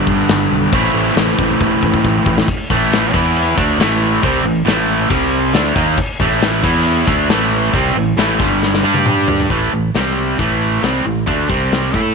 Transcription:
Already playing: distorted electric guitar G2 D3 G3 B3 D4
0.07 fingered electric bass G1, kick
0.28 fingered electric bass G1, snare, open hi-hat
0.51 fingered electric bass B1
0.72 fingered electric bass A1, distorted electric guitar A2 E3 A3 C4 E4, kick, open hi-hat
0.94 fingered electric bass A1
1.16 fingered electric bass A1, snare, open hi-hat
1.38 fingered electric bass A1, kick
1.60 fingered electric bass A1, kick
1.83 fingered electric bass A1, kick
1.94 kick
2.05 fingered electric bass A1, kick
2.26 fingered electric bass A1, kick
2.38 snare
2.48 kick, crash
2.70 fingered electric bass A1, distorted electric guitar A2 E3 A3, kick
2.92 snare, crash
3.14 fingered electric bass E2, distorted electric guitar E3 B3 E4, kick
3.36 crash
3.57 fingered electric bass D2, distorted electric guitar D3 A3 D4, kick
3.78 fingered electric bass A1, distorted electric guitar A2 E3 A3, snare, crash
4.22 fingered electric bass C2, distorted electric guitar C3 G3 C4, kick, crash
4.44 fingered electric bass A1, distorted electric guitar A2 E3
4.65 fingered electric bass A1, distorted electric guitar A2 E3 A3, snare, crash
5.09 fingered electric bass C2, distorted electric guitar C3 G3 C4, kick, crash
5.54 fingered electric bass D2, distorted electric guitar D3 A3 D4, snare, crash
5.75 fingered electric bass D#2, distorted electric guitar D#3 A#3 D#4, kick
5.98 kick, crash
6.20 fingered electric bass A1, distorted electric guitar A2 E3 A3, kick
6.41 snare, crash
6.63 fingered electric bass E2, distorted electric guitar E3 B3 E4, kick, crash
6.85 crash
7.07 fingered electric bass D2, distorted electric guitar D3 A3 D4, kick
7.29 fingered electric bass A1, distorted electric guitar A2 E3 A3, snare, crash
7.73 fingered electric bass C2, distorted electric guitar C3 G3 C4, kick, crash
7.95 fingered electric bass A1, distorted electric guitar A2 E3
8.17 fingered electric bass A1, distorted electric guitar A2 E3 A3, snare, crash
8.39 fingered electric bass G1, distorted electric guitar G2 D3 G3, kick
8.63 snare
8.74 snare
8.83 fingered electric bass G2, distorted electric guitar G3 D4 G4
8.94 high tom
9.06 mid tom
9.28 floor tom
9.40 floor tom
9.50 fingered electric bass A1, distorted electric guitar A2 E3 A3, kick, open hi-hat
9.72 fingered electric bass A1, distorted electric guitar A2 E3
9.94 fingered electric bass C2, distorted electric guitar C3 G3 C4, snare, open hi-hat
10.38 fingered electric bass A1, distorted electric guitar A2 E3 A3, kick, open hi-hat
10.83 fingered electric bass C2, distorted electric guitar C3 G3 C4, snare, open hi-hat
11.05 fingered electric bass A1, distorted electric guitar A2 E3
11.26 fingered electric bass D2, distorted electric guitar D3 A3 D4, kick, open hi-hat
11.49 fingered electric bass C2, distorted electric guitar C3 G3 C4, kick
11.72 snare, open hi-hat
11.94 fingered electric bass A2, distorted electric guitar A3 E4 A4, kick

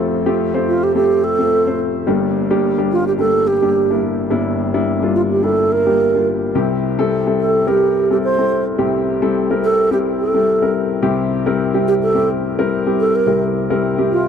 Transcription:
Already playing: grand piano F1 F2 A3 C4 F4 G4 A4
0.26 grand piano A3 C4 F4 G4
0.54 grand piano A3 C4 F4 C5
0.68 alto flute F4
0.83 alto flute G4
0.95 grand piano A3 C4 F4 A4, alto flute G4
1.24 alto flute A4
1.38 grand piano A3 C4 F4 A4
1.67 grand piano A3 C4 F4 C5
2.07 grand piano G1 G2 G3 A#3 D4 G4
2.50 grand piano G3 A#3 D4 G4
2.78 grand piano G3 A#3 D4 G4
2.92 alto flute F4
3.07 alto flute G4
3.19 grand piano G3 A#3 D4 G4, alto flute A4
3.47 alto flute G4
3.62 grand piano G3 A#3 D4 G4
3.90 grand piano G3 A#3 D4 E4
4.30 grand piano G1 G2 G3 A#3 D4 E4
4.74 grand piano G3 A#3 D4 E4
5.02 grand piano G3 A#3 D4 F4
5.16 alto flute F4
5.32 alto flute G4
5.43 grand piano G3 A#3 D4 E4, alto flute A4
5.72 alto flute A#4
5.86 grand piano G3 A#3 D4 G4
6.14 grand piano G3 A#3 D4 F4
6.55 grand piano C2 C3 G3 C4 E4 G4
6.99 grand piano G3 C4 E4 A4
7.27 grand piano G3 C4 E4 A4
7.40 alto flute A4
7.67 grand piano G3 C4 E4 A#4, alto flute G4
8.10 grand piano G3 C4 E4 A4, alto flute G4
8.24 alto flute C5
8.38 grand piano G3 C4 E4 A4
8.78 grand piano C2 C3 G3 C4 E4 G4
9.22 grand piano G3 C4 E4 A4
9.50 grand piano G3 C4 E4 A#4
9.64 alto flute A4
9.91 grand piano G3 C4 E4 G4, alto flute G4
10.21 alto flute A4
10.34 grand piano G3 C4 E4 A4
10.62 grand piano G3 C4 E4 A#4
11.02 grand piano C2 C3 G3 C4 E4 G4
11.46 grand piano G3 C4 E4 A#4
11.74 grand piano G3 C4 E4 G4
11.88 alto flute G4
12.03 alto flute A4
12.14 grand piano G3 C4 E4 G4
12.58 grand piano G3 C4 E4 A#4
12.86 grand piano G3 C4 E4 G4
13.00 alto flute A4
13.16 alto flute A#4
13.26 grand piano C2 C3 G3 C4 E4 A#4
13.70 grand piano G3 C4 E4 A#4
13.98 grand piano G3 C4 E4 G4
14.12 alto flute F4

